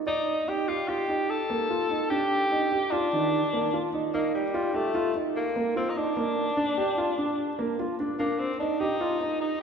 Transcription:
0, 0, Header, 1, 3, 480
1, 0, Start_track
1, 0, Tempo, 406229
1, 90, Time_signature, 5, 2, 24, 8
1, 11367, End_track
2, 0, Start_track
2, 0, Title_t, "Grand piano"
2, 0, Program_c, 0, 0
2, 79, Note_on_c, 0, 74, 77
2, 423, Note_off_c, 0, 74, 0
2, 568, Note_on_c, 0, 63, 68
2, 739, Note_off_c, 0, 63, 0
2, 806, Note_on_c, 0, 67, 63
2, 977, Note_off_c, 0, 67, 0
2, 1043, Note_on_c, 0, 65, 71
2, 1216, Note_off_c, 0, 65, 0
2, 1286, Note_on_c, 0, 63, 58
2, 1628, Note_off_c, 0, 63, 0
2, 1769, Note_on_c, 0, 58, 69
2, 1939, Note_off_c, 0, 58, 0
2, 2012, Note_on_c, 0, 65, 66
2, 2181, Note_off_c, 0, 65, 0
2, 2250, Note_on_c, 0, 63, 62
2, 2420, Note_off_c, 0, 63, 0
2, 2493, Note_on_c, 0, 62, 75
2, 2832, Note_off_c, 0, 62, 0
2, 2969, Note_on_c, 0, 63, 72
2, 3139, Note_off_c, 0, 63, 0
2, 3214, Note_on_c, 0, 67, 66
2, 3383, Note_off_c, 0, 67, 0
2, 3453, Note_on_c, 0, 65, 76
2, 3622, Note_off_c, 0, 65, 0
2, 3695, Note_on_c, 0, 51, 66
2, 4034, Note_off_c, 0, 51, 0
2, 4171, Note_on_c, 0, 58, 69
2, 4340, Note_off_c, 0, 58, 0
2, 4414, Note_on_c, 0, 65, 65
2, 4583, Note_off_c, 0, 65, 0
2, 4649, Note_on_c, 0, 63, 67
2, 4820, Note_off_c, 0, 63, 0
2, 4889, Note_on_c, 0, 63, 82
2, 5230, Note_off_c, 0, 63, 0
2, 5367, Note_on_c, 0, 65, 78
2, 5539, Note_off_c, 0, 65, 0
2, 5605, Note_on_c, 0, 67, 66
2, 5777, Note_off_c, 0, 67, 0
2, 5845, Note_on_c, 0, 65, 77
2, 6017, Note_off_c, 0, 65, 0
2, 6087, Note_on_c, 0, 63, 62
2, 6429, Note_off_c, 0, 63, 0
2, 6568, Note_on_c, 0, 58, 76
2, 6739, Note_off_c, 0, 58, 0
2, 6807, Note_on_c, 0, 65, 71
2, 6979, Note_off_c, 0, 65, 0
2, 7046, Note_on_c, 0, 63, 72
2, 7218, Note_off_c, 0, 63, 0
2, 7286, Note_on_c, 0, 58, 78
2, 7628, Note_off_c, 0, 58, 0
2, 7765, Note_on_c, 0, 62, 78
2, 7937, Note_off_c, 0, 62, 0
2, 8005, Note_on_c, 0, 67, 72
2, 8177, Note_off_c, 0, 67, 0
2, 8246, Note_on_c, 0, 65, 77
2, 8418, Note_off_c, 0, 65, 0
2, 8490, Note_on_c, 0, 62, 66
2, 8830, Note_off_c, 0, 62, 0
2, 8965, Note_on_c, 0, 58, 79
2, 9137, Note_off_c, 0, 58, 0
2, 9209, Note_on_c, 0, 65, 68
2, 9380, Note_off_c, 0, 65, 0
2, 9451, Note_on_c, 0, 62, 70
2, 9620, Note_off_c, 0, 62, 0
2, 9684, Note_on_c, 0, 62, 80
2, 10026, Note_off_c, 0, 62, 0
2, 10165, Note_on_c, 0, 63, 76
2, 10336, Note_off_c, 0, 63, 0
2, 10402, Note_on_c, 0, 67, 71
2, 10574, Note_off_c, 0, 67, 0
2, 10643, Note_on_c, 0, 65, 77
2, 10815, Note_off_c, 0, 65, 0
2, 10883, Note_on_c, 0, 63, 66
2, 11224, Note_off_c, 0, 63, 0
2, 11367, End_track
3, 0, Start_track
3, 0, Title_t, "Tenor saxophone"
3, 0, Program_c, 1, 66
3, 86, Note_on_c, 1, 63, 88
3, 572, Note_on_c, 1, 67, 78
3, 590, Note_off_c, 1, 63, 0
3, 799, Note_on_c, 1, 65, 83
3, 816, Note_off_c, 1, 67, 0
3, 1041, Note_on_c, 1, 67, 85
3, 1059, Note_off_c, 1, 65, 0
3, 1533, Note_on_c, 1, 69, 92
3, 1551, Note_off_c, 1, 67, 0
3, 2476, Note_off_c, 1, 69, 0
3, 2483, Note_on_c, 1, 67, 94
3, 3442, Note_on_c, 1, 62, 93
3, 3460, Note_off_c, 1, 67, 0
3, 4646, Note_off_c, 1, 62, 0
3, 4892, Note_on_c, 1, 58, 78
3, 5114, Note_off_c, 1, 58, 0
3, 5136, Note_on_c, 1, 55, 78
3, 5611, Note_on_c, 1, 57, 91
3, 5629, Note_off_c, 1, 55, 0
3, 6091, Note_off_c, 1, 57, 0
3, 6336, Note_on_c, 1, 58, 81
3, 6780, Note_off_c, 1, 58, 0
3, 6813, Note_on_c, 1, 60, 73
3, 6966, Note_on_c, 1, 63, 58
3, 6984, Note_off_c, 1, 60, 0
3, 7057, Note_on_c, 1, 62, 88
3, 7074, Note_off_c, 1, 63, 0
3, 9213, Note_off_c, 1, 62, 0
3, 9677, Note_on_c, 1, 58, 74
3, 9918, Note_on_c, 1, 60, 74
3, 9936, Note_off_c, 1, 58, 0
3, 10152, Note_off_c, 1, 60, 0
3, 10159, Note_on_c, 1, 62, 75
3, 10399, Note_on_c, 1, 63, 89
3, 10417, Note_off_c, 1, 62, 0
3, 11109, Note_off_c, 1, 63, 0
3, 11116, Note_on_c, 1, 63, 73
3, 11344, Note_off_c, 1, 63, 0
3, 11367, End_track
0, 0, End_of_file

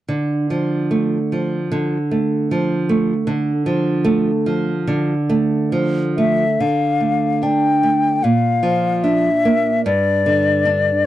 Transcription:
0, 0, Header, 1, 3, 480
1, 0, Start_track
1, 0, Key_signature, -1, "minor"
1, 0, Tempo, 823045
1, 55, Time_signature, 4, 2, 24, 8
1, 1014, Tempo, 773196
1, 2454, Tempo, 834492
1, 3414, Tempo, 882353
1, 3894, Tempo, 807537
1, 6541, End_track
2, 0, Start_track
2, 0, Title_t, "Flute"
2, 0, Program_c, 0, 73
2, 3655, Note_on_c, 0, 76, 53
2, 3893, Note_on_c, 0, 77, 45
2, 3902, Note_off_c, 0, 76, 0
2, 4381, Note_on_c, 0, 79, 51
2, 4390, Note_off_c, 0, 77, 0
2, 4858, Note_on_c, 0, 77, 53
2, 4867, Note_off_c, 0, 79, 0
2, 5337, Note_on_c, 0, 76, 51
2, 5346, Note_off_c, 0, 77, 0
2, 5820, Note_off_c, 0, 76, 0
2, 5824, Note_on_c, 0, 74, 57
2, 6541, Note_off_c, 0, 74, 0
2, 6541, End_track
3, 0, Start_track
3, 0, Title_t, "Nylon-string guitar"
3, 0, Program_c, 1, 24
3, 49, Note_on_c, 1, 50, 43
3, 293, Note_on_c, 1, 53, 28
3, 529, Note_on_c, 1, 57, 35
3, 682, Note_off_c, 1, 53, 0
3, 771, Note_on_c, 1, 53, 33
3, 914, Note_off_c, 1, 57, 0
3, 988, Note_off_c, 1, 50, 0
3, 1000, Note_on_c, 1, 50, 43
3, 1156, Note_off_c, 1, 53, 0
3, 1247, Note_on_c, 1, 57, 32
3, 1494, Note_on_c, 1, 53, 36
3, 1636, Note_off_c, 1, 57, 0
3, 1730, Note_on_c, 1, 57, 38
3, 1875, Note_off_c, 1, 53, 0
3, 1940, Note_off_c, 1, 50, 0
3, 1964, Note_on_c, 1, 50, 52
3, 2112, Note_off_c, 1, 57, 0
3, 2207, Note_on_c, 1, 53, 38
3, 2446, Note_on_c, 1, 57, 47
3, 2592, Note_off_c, 1, 53, 0
3, 2686, Note_on_c, 1, 53, 43
3, 2826, Note_off_c, 1, 57, 0
3, 2901, Note_off_c, 1, 50, 0
3, 2923, Note_on_c, 1, 50, 48
3, 3072, Note_off_c, 1, 53, 0
3, 3165, Note_on_c, 1, 57, 41
3, 3411, Note_on_c, 1, 53, 38
3, 3555, Note_off_c, 1, 57, 0
3, 3659, Note_on_c, 1, 57, 33
3, 3801, Note_off_c, 1, 53, 0
3, 3871, Note_off_c, 1, 50, 0
3, 3891, Note_on_c, 1, 50, 39
3, 3896, Note_off_c, 1, 57, 0
3, 4128, Note_on_c, 1, 57, 27
3, 4379, Note_on_c, 1, 62, 34
3, 4522, Note_off_c, 1, 57, 0
3, 4621, Note_on_c, 1, 57, 31
3, 4768, Note_off_c, 1, 62, 0
3, 4839, Note_off_c, 1, 50, 0
3, 4862, Note_on_c, 1, 46, 39
3, 4863, Note_off_c, 1, 57, 0
3, 5094, Note_on_c, 1, 53, 33
3, 5337, Note_on_c, 1, 62, 33
3, 5484, Note_off_c, 1, 53, 0
3, 5583, Note_on_c, 1, 58, 32
3, 5729, Note_off_c, 1, 62, 0
3, 5802, Note_off_c, 1, 46, 0
3, 5825, Note_on_c, 1, 43, 47
3, 5826, Note_off_c, 1, 58, 0
3, 6064, Note_on_c, 1, 50, 30
3, 6297, Note_on_c, 1, 62, 37
3, 6441, Note_off_c, 1, 50, 0
3, 6541, Note_off_c, 1, 43, 0
3, 6541, Note_off_c, 1, 62, 0
3, 6541, End_track
0, 0, End_of_file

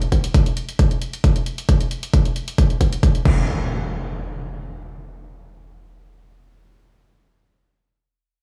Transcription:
0, 0, Header, 1, 3, 480
1, 0, Start_track
1, 0, Tempo, 447761
1, 1810, Time_signature, 4, 2, 24, 8
1, 9029, End_track
2, 0, Start_track
2, 0, Title_t, "Impact"
2, 0, Program_c, 0, 103
2, 3490, Note_on_c, 0, 60, 67
2, 7211, Note_off_c, 0, 60, 0
2, 9029, End_track
3, 0, Start_track
3, 0, Title_t, "Drums"
3, 17, Note_on_c, 9, 42, 50
3, 124, Note_off_c, 9, 42, 0
3, 129, Note_on_c, 9, 42, 64
3, 130, Note_on_c, 9, 36, 56
3, 237, Note_off_c, 9, 36, 0
3, 237, Note_off_c, 9, 42, 0
3, 256, Note_on_c, 9, 42, 52
3, 363, Note_off_c, 9, 42, 0
3, 369, Note_on_c, 9, 42, 90
3, 370, Note_on_c, 9, 36, 114
3, 476, Note_off_c, 9, 42, 0
3, 477, Note_off_c, 9, 36, 0
3, 495, Note_on_c, 9, 42, 50
3, 603, Note_off_c, 9, 42, 0
3, 608, Note_on_c, 9, 42, 60
3, 716, Note_off_c, 9, 42, 0
3, 735, Note_on_c, 9, 42, 51
3, 843, Note_off_c, 9, 42, 0
3, 849, Note_on_c, 9, 36, 104
3, 849, Note_on_c, 9, 42, 87
3, 956, Note_off_c, 9, 42, 0
3, 957, Note_off_c, 9, 36, 0
3, 976, Note_on_c, 9, 42, 45
3, 1083, Note_off_c, 9, 42, 0
3, 1089, Note_on_c, 9, 42, 64
3, 1196, Note_off_c, 9, 42, 0
3, 1216, Note_on_c, 9, 42, 46
3, 1323, Note_off_c, 9, 42, 0
3, 1329, Note_on_c, 9, 36, 109
3, 1329, Note_on_c, 9, 42, 88
3, 1436, Note_off_c, 9, 42, 0
3, 1437, Note_off_c, 9, 36, 0
3, 1455, Note_on_c, 9, 42, 52
3, 1562, Note_off_c, 9, 42, 0
3, 1568, Note_on_c, 9, 42, 64
3, 1676, Note_off_c, 9, 42, 0
3, 1695, Note_on_c, 9, 42, 51
3, 1803, Note_off_c, 9, 42, 0
3, 1808, Note_on_c, 9, 42, 93
3, 1809, Note_on_c, 9, 36, 107
3, 1916, Note_off_c, 9, 36, 0
3, 1916, Note_off_c, 9, 42, 0
3, 1935, Note_on_c, 9, 42, 55
3, 2042, Note_off_c, 9, 42, 0
3, 2048, Note_on_c, 9, 42, 64
3, 2155, Note_off_c, 9, 42, 0
3, 2176, Note_on_c, 9, 42, 54
3, 2283, Note_off_c, 9, 42, 0
3, 2289, Note_on_c, 9, 36, 112
3, 2289, Note_on_c, 9, 42, 96
3, 2396, Note_off_c, 9, 42, 0
3, 2397, Note_off_c, 9, 36, 0
3, 2416, Note_on_c, 9, 42, 49
3, 2523, Note_off_c, 9, 42, 0
3, 2529, Note_on_c, 9, 42, 65
3, 2637, Note_off_c, 9, 42, 0
3, 2656, Note_on_c, 9, 42, 53
3, 2763, Note_off_c, 9, 42, 0
3, 2769, Note_on_c, 9, 42, 92
3, 2770, Note_on_c, 9, 36, 106
3, 2877, Note_off_c, 9, 36, 0
3, 2877, Note_off_c, 9, 42, 0
3, 2896, Note_on_c, 9, 42, 47
3, 3003, Note_off_c, 9, 42, 0
3, 3009, Note_on_c, 9, 36, 56
3, 3009, Note_on_c, 9, 42, 65
3, 3116, Note_off_c, 9, 42, 0
3, 3117, Note_off_c, 9, 36, 0
3, 3136, Note_on_c, 9, 42, 50
3, 3243, Note_off_c, 9, 42, 0
3, 3249, Note_on_c, 9, 36, 106
3, 3249, Note_on_c, 9, 42, 92
3, 3356, Note_off_c, 9, 36, 0
3, 3357, Note_off_c, 9, 42, 0
3, 3376, Note_on_c, 9, 42, 53
3, 3483, Note_off_c, 9, 42, 0
3, 3489, Note_on_c, 9, 36, 115
3, 3489, Note_on_c, 9, 49, 88
3, 3596, Note_off_c, 9, 36, 0
3, 3596, Note_off_c, 9, 49, 0
3, 9029, End_track
0, 0, End_of_file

